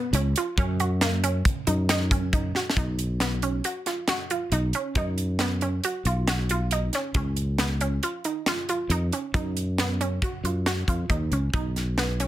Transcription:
0.13 C#2 C#4, closed hi-hat
0.36 F4, closed hi-hat
0.58 F#2 C#4, kick, closed hi-hat
0.80 F#4, closed hi-hat
1.01 A#3, snare, closed hi-hat
1.24 C#4, closed hi-hat
1.45 kick, closed hi-hat
1.67 F#2 D#4, closed hi-hat
1.89 D#4, snare, closed hi-hat
2.11 C#4, kick, closed hi-hat
2.33 D#4, kick, closed hi-hat
2.55 F#4, snare
2.70 snare
2.76 B1 D#4, kick, closed hi-hat
2.99 closed hi-hat
3.20 B3, snare, closed hi-hat
3.42 C#4, closed hi-hat
3.64 F#4, closed hi-hat
3.86 F4, snare, closed hi-hat
4.08 F#4, snare, closed hi-hat
4.30 F4, closed hi-hat
4.52 B1 D#4, closed hi-hat
4.73 C#4, closed hi-hat
4.95 F#2 D#4, kick, closed hi-hat
5.18 closed hi-hat
5.39 B3, snare, closed hi-hat
5.61 C#4, closed hi-hat
5.84 F#4, closed hi-hat
6.05 B1 F4, closed hi-hat
6.28 F#4, snare, closed hi-hat
6.49 F4, closed hi-hat
6.71 D#4, closed hi-hat
6.93 C#4, snare, closed hi-hat
7.14 C#2 C#4, kick, closed hi-hat
7.36 closed hi-hat
7.58 B3, snare, closed hi-hat
7.81 C#4, closed hi-hat
8.03 F4, closed hi-hat
8.24 D#4, closed hi-hat
8.46 F4, snare, closed hi-hat
8.69 F4, closed hi-hat
8.89 F2 D#4, closed hi-hat
9.12 C#4, closed hi-hat
9.34 F#2 D#4, kick, closed hi-hat
9.57 closed hi-hat
9.78 B3, snare, closed hi-hat
10.01 C#4, closed hi-hat
10.22 F#4, kick, closed hi-hat
10.44 F#2 F4, closed hi-hat
10.66 F#4, snare, closed hi-hat
10.88 F2 F4, kick, closed hi-hat
11.09 D#2 D#4, kick, closed hi-hat
11.31 C#2 C#4, closed hi-hat
11.53 B1 D#4, kick, closed hi-hat
11.76 snare, closed hi-hat
11.98 B3, snare, closed hi-hat
12.20 C#4, closed hi-hat

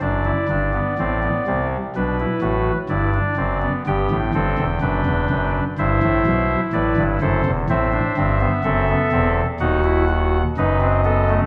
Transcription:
0.01 F#1 F#2 D4 D5
0.25 E4
0.49 G1 G2 D4
0.73 B3
0.99 A1 A2 C4
1.23 B3
1.47 C2 C3 C4
1.96 B1 B2 D4 B4
2.20 E4
2.42 A1 A2 F#4
2.89 G1 G2 E4 D5
3.14 D4
3.37 F#1 F#2 C4
3.62 B3
3.86 G1 G2 B3 G4 G5
4.11 A1 A2
4.34 G1 G2 C4 A4
4.58 E1 E2
4.81 F#1 F#2 D4 B4
5.06 E1 E2
5.30 F#1 F#2
5.78 G1 G2 E4 C5 E5
6.03 A1 A2
6.27 B1 B2
6.73 A1 A2 B4 D5
6.97 G1 G2
7.21 F#1 F#2 A4 C5
7.46 E1 E2
7.69 A1 A2 C4 C5 E5
7.92 D4
8.17 G1 G2 C4
8.41 B3
8.64 F#1 F#2 C4 A4
8.89 B3
9.12 E1 E2 C4
9.60 D#1 D#2 D#4 F#4 F#5
9.84 E4
10.08 F#4
10.57 F#1 F#2 D#4 B4 D#5
10.81 C4
11.05 B3 A4
11.29 A3

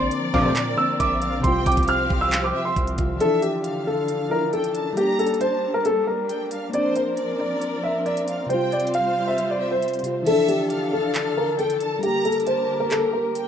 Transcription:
Already playing: A#1 D3 F3 A#3 C4 A#4 D5 C6
0.11 D5, closed hi-hat
0.34 D2 A#2 C3 F3 D6, kick
0.56 clap, closed hi-hat
0.76 D3 A#3 C4 E6
1.00 A#1 E5 D6, kick, closed hi-hat
1.22 F5, closed hi-hat
1.40 C3 G3 C6
1.44 C2 F3 F4 G4 C5 G5, kick, closed hi-hat
1.66 C2 D6, kick, closed hi-hat
1.72 closed hi-hat
1.77 kick, closed hi-hat
1.83 closed hi-hat
1.88 F5 F6, closed hi-hat
2.10 C2, kick
2.21 E6
2.32 clap, closed hi-hat
2.44 D6
2.54 E5
2.65 C6
2.76 C2, kick, closed hi-hat
2.87 closed hi-hat
2.96 C2 C3 G3 F4, kick, closed hi-hat
3.17 D3 F3 D4 A4 E5, closed hi-hat
3.24 E3
3.42 G4, closed hi-hat
3.64 F5, closed hi-hat
3.87 A4
4.08 closed hi-hat
4.29 F3 D4 E4 A#4
4.53 A4 G5, closed hi-hat
4.64 closed hi-hat
4.75 A5, closed hi-hat
4.93 G3 A#3 A#5, closed hi-hat
4.97 G3 A#3 G4
5.19 A4, closed hi-hat
5.27 closed hi-hat
5.34 closed hi-hat
5.41 C5 A5, closed hi-hat
5.74 A#4
5.85 A4, closed hi-hat
6.07 A#4
6.29 G5, closed hi-hat
6.51 F5, closed hi-hat
6.70 A#3 C4 C5, closed hi-hat
6.74 F3 C4 D4 A#4 D5
6.96 C5, closed hi-hat
7.17 D5, closed hi-hat
7.40 D5
7.62 closed hi-hat
7.83 E5
8.06 D5 E5, closed hi-hat
8.17 closed hi-hat
8.28 F5, closed hi-hat
8.46 C3 G3 F4 C5 G5, closed hi-hat
8.54 F4
8.72 D5, closed hi-hat
8.80 closed hi-hat
8.87 closed hi-hat
8.94 F5, closed hi-hat
9.28 E5
9.38 closed hi-hat
9.50 D5
9.60 E5
9.71 C5
9.82 closed hi-hat
9.88 closed hi-hat
9.94 closed hi-hat
9.99 C3, closed hi-hat
10.04 G3 F4, closed hi-hat
10.23 D3 E3 F3 D4 A4 E5, closed hi-hat, crash
10.31 D4
10.48 G4, closed hi-hat
10.70 F5, closed hi-hat
10.93 A4
11.14 clap, closed hi-hat
11.37 A#4
11.59 A4 G5, closed hi-hat
11.70 closed hi-hat
11.80 A5, closed hi-hat
11.99 D3 G3 A#3 A#4 A#5, closed hi-hat
12.03 A#3 G4
12.25 A4, closed hi-hat
12.32 closed hi-hat
12.40 closed hi-hat
12.47 C5 A5, closed hi-hat
12.80 A#4
12.91 A4, clap, closed hi-hat
13.13 A#4
13.35 G5, closed hi-hat

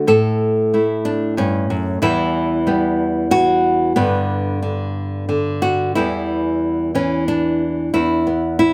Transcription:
0.07 A2 A4
0.74 A3 E4
1.05 D4
1.37 G2 C#4
1.70 F#2
2.02 E2 E3 G3 B3 E4
2.67 G3 B3
3.31 E3 F#4
3.96 G2 D3 B3
4.62 D3
5.29 D3
5.62 F#4
5.95 E2 E3 G3 B3 E4
6.95 E3 C#4
7.28 D4
7.94 E2 E4
8.27 B3
8.59 E4

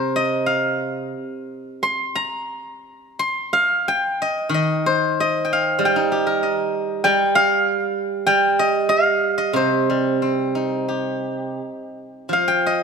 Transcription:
Already playing: C3 A#4 C5 F5
0.16 D#5
0.46 F5
1.83 C6
2.15 A#5
3.19 C6
3.53 F5
3.88 G5
4.22 D#5
4.49 D#3
4.54 D#5
4.86 C5
5.20 D#5
5.45 G5
5.53 F5
5.79 G3
5.85 G5
5.96 D#4
6.12 G4
6.27 A#4
6.43 D#5
7.04 G3 G5
7.35 F5
8.27 G3 G5
8.59 D#5
8.89 F5
9.38 D#5
9.53 C3 C5
9.90 G3
10.22 C4
10.55 D#4
10.88 G4
12.29 F3 F5
12.48 G5
12.66 D#5

